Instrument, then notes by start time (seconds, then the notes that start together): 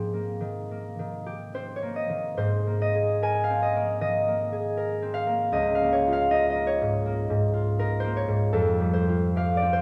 harp
Already playing: G#2 A#3 C4 D#4 G4 G#4 A#4 C5 D#5
0.13 A#3
0.40 D#3
0.71 A#3
0.99 D#3
1.26 G4
1.54 C4 C5
1.76 C#5
1.82 A#3
1.96 D#5
2.09 D#3
2.37 G#2 C5
2.67 A#3
2.82 D#5
2.95 G#4
3.22 A#4 G#5
3.44 F5
3.50 C4
3.62 D#5
3.76 A#3
4.01 D#3 D#5
4.28 A#3
4.52 G#4
4.77 A#4
5.02 C4
5.14 F5
5.27 A#3
5.52 C#2 D#5
5.75 F5
5.82 A#3
5.93 C#5
6.07 F4
6.13 F5
6.31 D#4 D#5
6.50 D#5
6.55 A#3
6.67 C#5
6.81 G#2
7.06 A#3
7.30 G#2
7.54 F4
7.79 D#4 A#4
8.00 C5
8.04 A#3
8.17 C#5
8.28 G#2
8.53 F2 A4
8.80 G3
8.94 C5
9.09 F4
9.36 G4 F5
9.57 D5
9.62 C4
9.73 C5